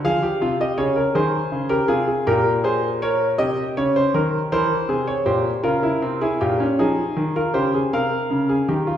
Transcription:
grand piano
0.05 F3 G#4 F5
0.23 G4
0.42 C3 F4
0.60 G4 D#5
0.78 C#3 G#4 C#5
0.96 A#4
1.15 D#3 G#4 C5
1.52 C#3
1.69 G4 A#4
1.88 C3 F4 G#4
2.08 G#4
2.27 A#2 G4 A#4
2.64 G#4 C5
3.02 A#4 C#5
3.38 C3 G4 D#5
3.77 C#3 C#5
3.96 C5
4.14 D#3 A#4
4.52 E3 A#4 C5
4.89 C3 G#4
5.07 C#5
5.26 A#2 G4 C5
5.63 C#3 F4 A#4
5.83 E4
6.02 C3 C4
6.21 E4 G#4
6.41 A#2 F4 G4
6.60 C#4
6.79 F3 D#4 G#4
7.17 D#3
7.36 F4 A#4
7.54 C#3 G4 C5
7.74 G#4
7.93 C3 A#4 F5
8.31 C#3
8.49 G#4
8.68 D#3 G4
8.87 F4

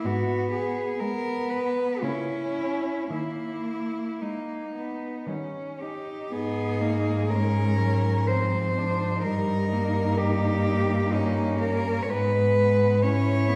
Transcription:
cello
0.05 G#2 B3 F#4
0.52 G#4
1.00 G#3 B3 A#4
1.50 B4
2.02 C#3 A#3 C#4 E4
3.10 D#3 A#3 E4
4.21 G#3 A#3 D#4
4.76 B3
5.27 D#3 G3 C#4
5.81 D#4 G4
6.32 G#2 B3 D#4 G#4
6.81 A#3
7.31 G#3 C#4 A#4
7.79 F#3
8.28 F3 C4 C5
8.78 D4
9.23 G2 G3 D#4 A#4
9.73 A#3
10.18 G4
11.13 C#4 D#4
11.60 A#4
12.03 C#5
12.10 G#2 G#3 B3 B4
13.03 C#4 E4 C#5
13.49 B3

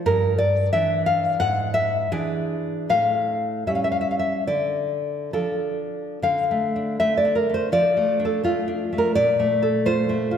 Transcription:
nylon-string guitar
0.06 G2 A#4
0.38 D5
0.73 E3 D4 E5
1.06 F5
1.40 G#2 F#5
1.74 E5
2.12 E3 D4 G#4
2.89 A2 F5
3.67 G3 C#4 E5
3.75 F5
3.84 E5
3.92 F5
4.01 E5
4.11 F5
4.19 E5
4.47 D3 D5
5.33 F3 D4 A4
6.22 D3 F5
6.51 A3
6.76 D4
7.00 A3 E5
7.17 D5
7.25 D4
7.35 A#4
7.49 A3
7.54 C5
7.72 F3 D5
7.97 A3
8.20 D4
8.25 A4
8.44 A3 F4
8.68 D4
8.93 A3
8.98 A#4
9.15 A#2 D5
9.40 A3
9.62 A4
9.86 F4 C5
10.09 A3
10.31 F4

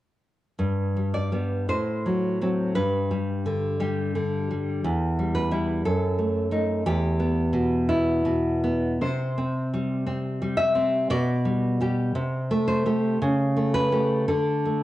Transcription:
nylon-string guitar
0.59 G2
0.97 G3
1.14 D5
1.32 G3 B3
1.69 A2 C5
2.06 F#3
2.41 F#3 C4
2.75 G2 B4
3.11 G3
3.46 D3
3.80 G3 G4
4.15 D3
4.51 G3
4.84 E2
5.19 G3
5.35 B4
5.51 G3 E4
5.85 F#2 A4
6.18 A3
6.51 A3 D#4
6.86 E2 G4
7.20 B3
7.53 B2
7.89 B3 E4
8.25 B2
8.64 B3
9.01 C3 C5
9.38 C4
9.74 G3
10.06 C4
10.42 G3
10.57 E5
10.75 C4
11.10 B2 D5
11.45 G3
11.81 G3 G4
12.15 C3
12.51 A3
12.68 C5
12.86 A3 G4
13.22 C#3
13.57 A3
13.74 B4
13.92 A3 G4
14.28 D3 A4
14.66 A3

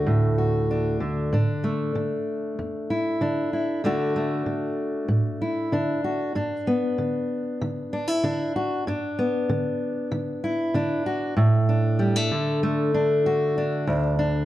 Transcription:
steel-string acoustic guitar
Already playing: D2 D3 A3 D4 F#4
0.06 A2
0.38 F#4
0.71 D4
1.00 D3
1.33 A2 D4
1.64 A3
1.95 D3
2.59 E2
2.90 E4
3.21 D3 D4
3.53 E4
3.84 D2 D3 A3 D4 F#4
4.16 A3
4.46 D3
5.08 A2
5.42 E4
5.72 D3 D4
6.04 F#4
6.35 G2 D4
6.67 B3
6.98 D3
7.61 D3
7.93 D4
8.08 E4
8.24 D3 D4
8.56 F#4
8.87 G2 D4
9.19 B3
9.49 D3
10.12 D3
10.44 E4
10.74 D3 D4
11.06 F#4
11.37 A2
11.69 D4
11.99 G3
12.16 A3
12.31 D3
12.63 A3
12.94 D4
13.26 F#4
13.58 D4
13.87 D2
14.19 D4

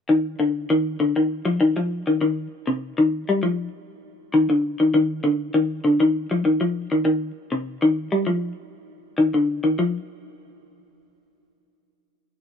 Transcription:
clean electric guitar
0.09 D#3
0.39 D3
0.70 D#3
1.00 D3
1.16 D#3
1.45 F3
1.61 D#3
1.77 F3
2.07 D#3
2.21 D#3
2.67 C3
2.98 D#3
3.29 G3
3.43 F3
4.34 D#3
4.50 D3
4.80 D#3
4.94 D#3
5.24 D3
5.54 D#3
5.84 D3
6.00 D#3
6.31 F3
6.45 D#3
6.61 F3
6.92 D#3
7.05 D#3
7.52 C3
7.82 D#3
8.12 G3
8.27 F3
9.18 D#3
9.34 D3
9.64 D#3
9.79 F3

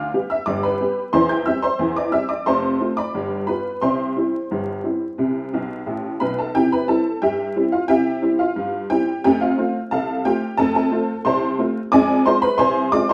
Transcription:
honky-tonk piano
Already playing: F5 D6 F6
0.14 G3 B3 G4
0.30 E5 E6
0.46 G1 G2 D5 D6
0.63 B4 B5
0.81 G3 B3 G4
1.13 E2 E3 C5 C6
1.29 G5 G6
1.46 G3 C4 G4 E5 E6
1.62 C5 C6
1.79 E2 E3
1.96 D5 D6
2.12 G3 C4 G4 E5 E6
2.29 D5 D6
2.46 F1 F2 C5 A5 C6
2.80 A3 C4 F4
2.97 D5 B5 D6
3.14 G1 G2
3.47 G3 B3 F4 B4 B5
3.81 C2 C3 C5 G5 C6
4.17 G3 C4 E4
4.51 G1 G2
4.84 G3 C4 E4
5.18 C2 C3
5.53 B1 B2
5.86 A1 A2
6.20 B1 B2 B4 B5
6.39 A4 A5
6.55 C3 E4 G4 G5
6.72 B4 B5
6.88 G3 C4 E4 A4 A5
7.22 G2 G4 E5 G5
7.56 G3 C4 E4
7.72 F4 F5
7.88 C3 E4 G4 E5 G5
8.22 G3 C4 E4
8.39 F4 F5
8.56 G2
8.90 G3 C4 E4 G4 G5
9.24 F2 A3 G4 G5
9.41 F4 F5
9.58 A3 C4 F4
9.91 C2 A4 F5 A5
10.25 A3 C4 F4 G4 G5
10.57 F2 A3 A4 A5
10.75 A4 A5
10.91 A3 C4 F4
11.25 C2 C5 A5 C6
11.59 A3 C4 F4
11.92 F2 G#3 D5 G#5 D6
12.26 G#3 C4 F4 C5 C6
12.42 B4 B5
12.58 C2 C5 G#5 C6
12.92 G#3 C4 F4 D5 D6
13.09 C6

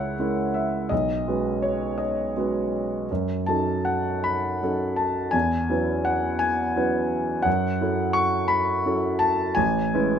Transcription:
grand piano
Already playing: C#2 G#3 C#4 E4 A#4 C#5 E5 F#5
0.19 G#3 C#4 E4 A#4
0.54 E5
0.89 B1 D#5
1.28 G#3 C#4 F#4 B4
1.62 C#5
1.98 D#5
2.37 G#3 C#4 F#4 B4
3.11 F#2
3.46 F#3 C#4 D#4 A4 A5
3.85 F#5
4.24 B5
4.63 F#3 C#4 D#4 A4
4.96 A5
5.31 E2 G#5
5.69 F#3 C#4 E4 B4
6.05 F#5
6.39 G#5
6.76 F#3 C#4 E4 B4
7.42 F#2 F#5
7.81 F#3 C#4 E4 A4
8.13 C#6
8.48 B5
8.86 F#3 C#4 E4 A4
9.19 A5
9.55 A1 G#5
9.94 G#3 C#4 E4 B4

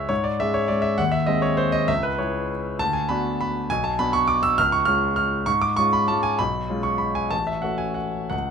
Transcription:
grand piano
Already playing: C#2 G#3 C#4 G#4 C#5 E5
0.09 G#2 C#5
0.24 D5
0.40 G#3 C#4 G#4 E5
0.54 C#5
0.68 G#3 C#4 G#4 D5
0.82 E5
0.98 D#2 F#5
1.12 E5
1.26 G#3 C4 G#4 D#5
1.42 C#5
1.57 C5
1.72 D#5
1.88 C#2 E5
2.03 B4
2.18 G#3 E4 G#4 C#5
2.79 D2 A5
2.93 G#5
3.09 B3 D4 F#4 B5
3.41 B5
3.70 B1 G#5
3.84 A5
3.99 B3 D4 F#4 B5
4.13 C#6
4.28 D6
4.43 E6
4.58 C#2 F6
4.72 C#6
4.85 G#3 C#4 F4 F6
5.16 F6
5.46 G#2 C#6
5.62 D6
5.76 G#3 C#4 F4 C#6
5.93 B5
6.08 G#3 C#4 F4 A5
6.23 G#5
6.39 B1 B5
6.69 G#3 C#4 F4
6.83 C#6
6.98 B5
7.15 G#5
7.31 A1 A5
7.47 E5
7.62 A3 C#4 F#4 F#5
7.78 G#5
7.94 F#5
8.30 C#2 F#5

